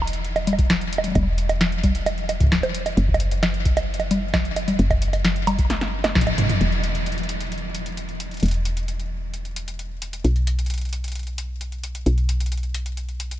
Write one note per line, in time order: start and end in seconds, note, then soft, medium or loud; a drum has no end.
0.00 1.13 E1 medium
0.00 high bongo medium
0.07 closed hi-hat medium
0.13 closed hi-hat soft
0.24 closed hi-hat soft
0.36 closed hi-hat soft
0.36 high bongo medium
0.47 closed hi-hat medium
0.47 low conga medium
0.53 high bongo soft
0.58 kick loud
0.58 closed hi-hat soft
0.70 snare loud
0.70 closed hi-hat soft
0.81 closed hi-hat soft
0.93 closed hi-hat medium
0.98 high bongo medium
1.04 closed hi-hat soft
1.04 low conga soft
1.08 low conga soft
1.11 closed hi-hat soft
1.11 high bongo medium
1.11 low conga soft
1.15 2.95 E1 medium
1.15 kick loud
1.15 low conga medium
1.19 low conga medium
1.23 low conga medium
1.38 closed hi-hat medium
1.49 closed hi-hat soft
1.49 high bongo medium
1.61 snare loud
1.61 closed hi-hat medium
1.72 closed hi-hat soft
1.83 kick loud
1.83 closed hi-hat medium
1.83 low conga medium
1.95 closed hi-hat soft
2.06 closed hi-hat soft
2.06 high bongo medium
2.18 closed hi-hat soft
2.29 closed hi-hat medium
2.29 high bongo medium
2.40 kick loud
2.40 closed hi-hat soft
2.43 kick medium
2.46 kick medium
2.49 kick medium
2.49 snare loud
2.49 closed hi-hat soft
2.57 kick soft
2.60 kick soft
2.60 closed hi-hat soft
2.60 high bongo medium
2.75 closed hi-hat medium
2.86 closed hi-hat soft
2.86 high bongo soft
2.97 4.77 F#1 medium
2.97 closed hi-hat medium
3.09 kick medium
3.14 closed hi-hat soft
3.14 high bongo medium
3.20 closed hi-hat medium
3.31 closed hi-hat soft
3.43 snare loud
3.43 closed hi-hat medium
3.43 high bongo medium
3.54 closed hi-hat soft
3.65 kick loud
3.65 closed hi-hat medium
3.77 closed hi-hat medium
3.77 high bongo medium
3.94 closed hi-hat soft
4.00 closed hi-hat soft
4.00 high bongo medium
4.11 closed hi-hat medium
4.11 low conga loud
4.33 kick loud
4.33 snare loud
4.33 closed hi-hat medium
4.33 high bongo medium
4.45 closed hi-hat soft
4.56 closed hi-hat medium
4.56 high bongo medium
4.68 closed hi-hat medium
4.68 low conga medium
4.79 6.59 F#1 medium
4.79 closed hi-hat medium
4.90 kick loud
4.90 closed hi-hat soft
4.90 high bongo medium
5.02 closed hi-hat medium
5.13 closed hi-hat medium
5.13 high bongo medium
5.25 snare loud
5.25 closed hi-hat medium
5.36 closed hi-hat soft
5.47 closed hi-hat medium
5.47 high bongo medium
5.47 low conga medium
5.58 kick loud
5.58 closed hi-hat medium
5.70 snare medium
5.70 closed hi-hat soft
5.81 snare medium
5.81 closed hi-hat soft
6.04 snare medium
6.04 closed hi-hat medium
6.04 high bongo medium
6.15 kick loud
6.15 snare loud
6.15 mid tom medium
6.21 closed hi-hat medium
6.27 high bongo medium
6.38 closed hi-hat medium
6.38 mid tom medium
6.42 mid tom medium
6.46 closed hi-hat medium
6.46 mid tom medium
6.49 mid tom medium
6.61 8.40 E1 medium
6.61 closed hi-hat soft
6.72 closed hi-hat soft
6.84 closed hi-hat medium
6.95 closed hi-hat medium
7.06 closed hi-hat soft
7.12 closed hi-hat soft
7.18 closed hi-hat soft
7.23 closed hi-hat soft
7.29 closed hi-hat medium
7.40 closed hi-hat soft
7.52 closed hi-hat soft
7.58 closed hi-hat soft
7.75 closed hi-hat medium
7.86 closed hi-hat soft
7.97 closed hi-hat soft
8.09 closed hi-hat soft
8.20 closed hi-hat medium
8.31 closed hi-hat soft
8.34 closed hi-hat soft
8.37 closed hi-hat soft
8.40 10.22 E1 medium
8.40 closed hi-hat soft
8.43 closed hi-hat medium
8.46 closed hi-hat soft
8.48 closed hi-hat soft
8.51 closed hi-hat soft
8.54 closed hi-hat soft
8.65 closed hi-hat medium
8.77 closed hi-hat soft
8.88 closed hi-hat medium
8.99 closed hi-hat soft
9.34 closed hi-hat soft
9.45 closed hi-hat soft
9.56 closed hi-hat medium
9.68 closed hi-hat medium
9.79 closed hi-hat soft
10.02 closed hi-hat medium
10.13 closed hi-hat medium
10.24 12.04 B1 medium
10.24 closed hi-hat soft
10.36 closed hi-hat soft
10.47 closed hi-hat medium
10.59 closed hi-hat soft
10.66 closed hi-hat soft
10.70 closed hi-hat soft
10.74 closed hi-hat soft
10.78 closed hi-hat soft
10.81 closed hi-hat soft
10.85 closed hi-hat soft
10.89 closed hi-hat soft
10.93 closed hi-hat medium
11.04 closed hi-hat soft
11.08 closed hi-hat soft
11.12 closed hi-hat soft
11.15 closed hi-hat soft
11.19 closed hi-hat soft
11.23 closed hi-hat soft
11.27 closed hi-hat soft
11.38 closed hi-hat medium
11.61 closed hi-hat soft
11.72 closed hi-hat soft
11.84 closed hi-hat medium
11.95 closed hi-hat medium
12.06 13.40 B1 medium
12.06 closed hi-hat soft
12.18 closed hi-hat soft
12.29 closed hi-hat medium
12.40 closed hi-hat soft
12.46 closed hi-hat soft
12.52 closed hi-hat soft
12.57 closed hi-hat soft
12.63 closed hi-hat soft
12.74 closed hi-hat medium
12.86 closed hi-hat soft
12.97 closed hi-hat soft
13.09 closed hi-hat soft
13.20 closed hi-hat medium
13.31 closed hi-hat soft